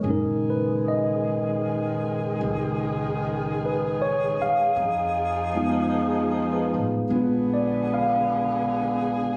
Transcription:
0.00 upright bass F#1, tine electric piano A#2 G#3, saxophone section D#3 G#3 G#4
0.06 tine electric piano C#4 D#4
0.10 tine electric piano A#4
0.50 tine electric piano B4
0.88 tine electric piano D#5
2.41 upright bass C#2
3.65 tine electric piano B4
4.02 tine electric piano C#5
4.40 tine electric piano F5, muted upright bass stroke
4.76 upright bass F2, saxophone section F3 D#4
5.55 tine electric piano G#3 B3 D#4 F4
5.95 tine electric piano G#4
6.53 tine electric piano B4
6.74 upright bass A1
7.09 upright bass A#1, saxophone section D3 B3 G#4, tine electric piano G#3 B3 D4
7.14 tine electric piano F4 B4
7.54 tine electric piano D5
7.94 tine electric piano F5

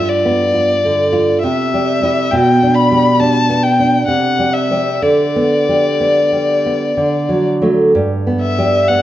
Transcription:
Already playing: nylon-string guitar G2 F4, violin E5
0.09 violin D5
0.25 nylon-string guitar B3
0.54 nylon-string guitar F4
0.85 nylon-string guitar D3
1.13 nylon-string guitar F4
1.43 nylon-string guitar C3, violin E5
1.74 nylon-string guitar G3
2.02 nylon-string guitar G3 E4
2.31 nylon-string guitar B2, violin G5
2.63 nylon-string guitar D4
2.75 violin B5
2.91 nylon-string guitar G3
3.19 nylon-string guitar D4, violin A5
3.50 nylon-string guitar B3
3.63 violin G5
3.80 nylon-string guitar D4
4.07 nylon-string guitar C3, violin F#5
4.39 nylon-string guitar G3
4.53 violin E5
4.71 nylon-string guitar G3 C4
5.02 nylon-string guitar D3, violin D5
5.36 nylon-string guitar B3
5.69 nylon-string guitar G3
6.00 nylon-string guitar B3
6.32 nylon-string guitar G3
6.66 nylon-string guitar B3
6.97 nylon-string guitar D3
7.29 nylon-string guitar F#3
7.62 nylon-string guitar F#3 A3
7.95 nylon-string guitar G2
8.27 nylon-string guitar B3
8.41 violin E5
8.58 nylon-string guitar G3
8.88 nylon-string guitar B3, violin F#5

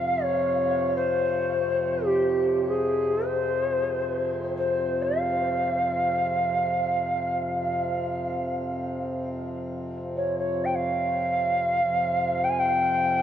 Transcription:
Already playing: harmonium F2 C3, native american-style wooden flute F5
0.24 native american-style wooden flute C#5
0.96 native american-style wooden flute C5
2.07 native american-style wooden flute G4
2.69 native american-style wooden flute G#4
3.26 native american-style wooden flute C5
4.57 native american-style wooden flute C5
5.03 native american-style wooden flute F5
10.17 native american-style wooden flute C#5
10.39 native american-style wooden flute C#5
10.65 native american-style wooden flute G5
10.75 native american-style wooden flute F5
11.81 harmonium F2 C3
12.44 native american-style wooden flute G5
12.49 native american-style wooden flute G#5
12.59 native american-style wooden flute G5

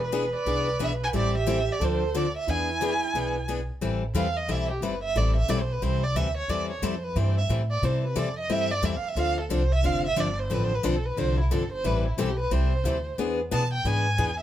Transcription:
Already playing: upright bass E1, soprano saxophone B4
0.04 violin B4
0.12 steel-string acoustic guitar E3 B3 D4 G#4
0.36 violin D5
0.46 upright bass C2, steel-string acoustic guitar E3 B3 D4 G#4
0.79 upright bass B1, steel-string acoustic guitar E3 B3 D4 G#4
0.84 violin E5
1.04 violin G#5
1.13 upright bass A1, steel-string acoustic guitar E3 G3 C4 E4 A4, soprano saxophone G4, violin D5
1.38 violin E5
1.46 steel-string acoustic guitar E3 G3 C4 E4 A4
1.72 violin D5
1.80 upright bass D2, steel-string acoustic guitar D3 F3 C4 D4 A4, soprano saxophone A4
1.84 violin C5
2.15 steel-string acoustic guitar D3 F3 C4 D4 A4, violin D5
2.37 violin E5
2.47 upright bass E2, steel-string acoustic guitar E3 B3 D4 G#4, soprano saxophone E4, violin G#5
2.81 steel-string acoustic guitar E3 B3 D4 G#4
3.14 upright bass B1, steel-string acoustic guitar E3 B3 D4 G#4
3.48 steel-string acoustic guitar E3 B3 D4 G#4
3.81 upright bass A1, steel-string acoustic guitar E3 G3 C4 E4 A4
4.14 upright bass E2, steel-string acoustic guitar E3 G3 C4 E4 A4, violin F5
4.37 violin D#5
4.48 upright bass B1, steel-string acoustic guitar E3 G3 C4 E4 A4, violin E5
4.71 violin G4
4.81 upright bass G1, steel-string acoustic guitar E3 G3 C4 E4 A4, violin B4
5.03 violin E5
5.15 upright bass A1, steel-string acoustic guitar E3 G3 C4 E4 A4, violin D5
5.36 violin E5
5.48 upright bass B1, steel-string acoustic guitar E3 G3 C4 E4 A4, violin D5
5.61 violin C5
5.72 violin B4
5.82 upright bass C2, steel-string acoustic guitar E3 G3 C4 E4 A4, violin C5
6.03 violin D5
6.15 upright bass D2, steel-string acoustic guitar E3 G3 C4 E4 A4, violin E5
6.37 violin C#5
6.48 upright bass E2, steel-string acoustic guitar E3 G3 C4 E4 A4, violin D5
6.71 violin C#5
6.82 upright bass F2, steel-string acoustic guitar E3 G3 C4 E4 A4, violin C5
7.03 violin B4
7.16 upright bass G2, steel-string acoustic guitar E3 G3 C4 E4 A4, violin C5
7.38 violin E5
7.49 upright bass A2, steel-string acoustic guitar E3 G3 C4 E4 A4
7.71 violin D5
7.82 upright bass C3, steel-string acoustic guitar E3 G3 C4 E4 A4, violin C5
8.05 violin B4
8.16 upright bass F2, steel-string acoustic guitar E3 G3 C4 E4 A4, violin D5
8.39 violin D#5
8.49 upright bass G2, steel-string acoustic guitar E3 G3 C4 E4 A4, violin E5
8.71 violin D5
8.82 upright bass E2, steel-string acoustic guitar E3 G3 C4 E4 A4, violin E5
8.97 violin F5
9.03 muted upright bass stroke
9.08 violin E5
9.15 upright bass D2, steel-string acoustic guitar D3 F3 C4 D4 A4, violin F5
9.41 violin A4
9.49 upright bass C2, steel-string acoustic guitar D3 F3 C4 D4 A4, violin C5
9.72 violin E5
9.83 upright bass F1, steel-string acoustic guitar D3 F3 C4 D4 A4, violin F5
10.06 violin E5
10.16 upright bass G1, steel-string acoustic guitar D3 F3 C4 D4 A4, violin D5
10.39 violin C5
10.50 upright bass A1, steel-string acoustic guitar D3 F3 C4 D4 A4
10.54 violin B4
10.64 violin C5
10.75 violin B4
10.83 upright bass B1, steel-string acoustic guitar D3 F3 C4 D4 A4, violin A4
11.06 violin B4
11.17 upright bass C2, steel-string acoustic guitar D3 F3 C4 D4 A4, violin C5
11.40 violin E4
11.51 upright bass G1, steel-string acoustic guitar D3 F3 C4 D4 A4, violin A4
11.72 violin C5
11.84 upright bass A1, steel-string acoustic guitar E3 G3 C4 E4 A4, violin B4
12.07 violin E4
12.17 upright bass B1, steel-string acoustic guitar E3 G3 C4 E4 A4, violin G4
12.39 violin B4
12.51 upright bass C2, steel-string acoustic guitar E3 G3 C4 E4 A4, violin C5
12.84 upright bass D2, steel-string acoustic guitar E3 G3 C4 E4 A4
13.18 upright bass E2, steel-string acoustic guitar E3 B3 D4 G#4
13.51 upright bass B2, steel-string acoustic guitar E3 B3 D4 G#4, violin A5
13.73 violin G5
13.85 upright bass G#2, steel-string acoustic guitar E3 B3 D4 G#4, violin G#5
14.18 upright bass E2, steel-string acoustic guitar E3 B3 D4 G#4

